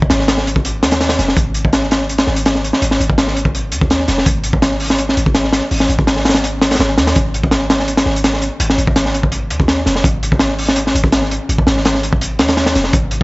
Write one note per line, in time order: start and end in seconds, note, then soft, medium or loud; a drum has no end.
0.02 kick medium
0.10 0.84 G#1 loud
0.10 snare loud
0.10 closed hi-hat medium
0.19 snare soft
0.28 snare loud
0.28 closed hi-hat medium
0.38 snare soft
0.47 closed hi-hat medium
0.56 kick medium
0.65 closed hi-hat loud
0.83 1.18 D#2 loud
0.83 snare loud
0.83 closed hi-hat medium
0.91 snare loud
0.91 closed hi-hat medium
1.01 snare loud
1.01 closed hi-hat medium
1.09 snare medium
1.09 closed hi-hat medium
1.19 1.35 F1 loud
1.19 snare soft
1.19 closed hi-hat medium
1.28 snare soft
1.36 2.26 G#1 loud
1.36 kick loud
1.36 closed hi-hat medium
1.54 closed hi-hat medium
1.65 kick loud
1.73 snare loud
1.73 closed hi-hat medium
1.91 snare loud
1.91 closed hi-hat medium
2.09 closed hi-hat medium
2.18 snare loud
2.18 closed hi-hat medium
2.27 2.72 G#1 medium
2.27 snare soft
2.36 closed hi-hat medium
2.46 snare loud
2.46 closed hi-hat medium
2.55 snare soft
2.64 closed hi-hat medium
2.73 snare medium
2.82 2.98 G#1 loud
2.82 closed hi-hat medium
2.91 snare medium
3.00 3.74 G#1 loud
3.00 closed hi-hat medium
3.10 kick medium
3.18 snare loud
3.18 closed hi-hat medium
3.28 snare soft
3.37 closed hi-hat medium
3.45 kick loud
3.55 closed hi-hat medium
3.72 4.07 D#2 loud
3.72 closed hi-hat medium
3.81 kick medium
3.90 snare loud
3.90 closed hi-hat medium
4.08 4.25 F1 loud
4.08 snare soft
4.08 closed hi-hat medium
4.18 snare soft
4.26 5.15 G#1 loud
4.26 kick loud
4.26 closed hi-hat loud
4.44 closed hi-hat medium
4.53 kick loud
4.62 snare loud
4.62 closed hi-hat medium
4.80 open hi-hat medium
4.90 snare medium
4.98 closed hi-hat medium
5.09 snare soft
5.17 5.61 G#1 medium
5.17 closed hi-hat medium
5.26 kick medium
5.35 snare loud
5.35 closed hi-hat medium
5.44 snare soft
5.53 snare loud
5.53 closed hi-hat medium
5.71 5.87 G#1 medium
5.71 open hi-hat medium
5.80 snare medium
5.89 6.78 G#1 loud
5.89 closed hi-hat medium
5.99 kick medium
6.07 snare loud
6.07 closed hi-hat medium
6.17 snare soft
6.25 snare medium
6.25 closed hi-hat medium
6.29 snare loud
6.29 closed hi-hat medium
6.34 snare loud
6.34 closed hi-hat medium
6.44 closed hi-hat medium
6.61 snare loud
6.61 closed hi-hat medium
6.71 snare medium
6.71 closed hi-hat medium
6.75 snare medium
6.75 closed hi-hat medium
6.79 6.99 G#1 medium
6.79 snare loud
6.79 closed hi-hat medium
6.97 7.14 D#2 loud
6.97 snare loud
6.97 closed hi-hat medium
7.07 snare loud
7.07 closed hi-hat medium
7.15 8.05 G#1 loud
7.15 kick loud
7.15 closed hi-hat medium
7.34 closed hi-hat medium
7.44 kick loud
7.51 snare loud
7.51 closed hi-hat medium
7.70 snare loud
7.70 closed hi-hat medium
7.80 snare soft
7.88 closed hi-hat medium
7.97 snare loud
7.97 closed hi-hat medium
8.06 8.50 G#1 medium
8.06 snare soft
8.16 closed hi-hat medium
8.24 snare loud
8.24 closed hi-hat medium
8.34 snare soft
8.42 closed hi-hat medium
8.60 8.76 G#1 loud
8.60 closed hi-hat medium
8.70 snare medium
8.78 9.52 G#1 loud
8.78 closed hi-hat medium
8.87 kick loud
8.96 snare loud
8.96 closed hi-hat loud
9.06 snare soft
9.14 closed hi-hat medium
9.23 kick medium
9.32 closed hi-hat loud
9.50 9.85 D#2 loud
9.50 closed hi-hat medium
9.60 kick medium
9.68 snare loud
9.68 closed hi-hat medium
9.86 10.03 F1 loud
9.86 snare soft
9.86 closed hi-hat medium
9.96 snare soft
10.04 10.93 G#1 loud
10.04 kick loud
10.04 closed hi-hat medium
10.23 closed hi-hat medium
10.32 kick medium
10.39 snare loud
10.39 closed hi-hat medium
10.59 open hi-hat medium
10.69 snare medium
10.76 closed hi-hat loud
10.87 snare soft
10.95 11.39 G#1 medium
10.95 closed hi-hat medium
11.04 kick loud
11.12 snare loud
11.12 closed hi-hat medium
11.22 snare soft
11.31 closed hi-hat medium
11.49 11.65 G#1 loud
11.49 closed hi-hat medium
11.58 kick loud
11.67 12.41 G#1 loud
11.67 snare loud
11.67 closed hi-hat medium
11.77 snare soft
11.85 snare loud
11.85 closed hi-hat medium
11.95 snare soft
12.03 closed hi-hat medium
12.13 kick loud
12.21 closed hi-hat loud
12.39 12.74 D#2 loud
12.39 snare loud
12.39 closed hi-hat medium
12.48 snare loud
12.48 closed hi-hat medium
12.57 snare loud
12.57 closed hi-hat medium
12.66 snare medium
12.66 closed hi-hat medium
12.75 12.92 F1 loud
12.75 snare soft
12.75 closed hi-hat medium
12.84 snare soft
12.93 13.23 G#1 loud
12.93 kick loud
12.93 closed hi-hat medium
13.11 closed hi-hat medium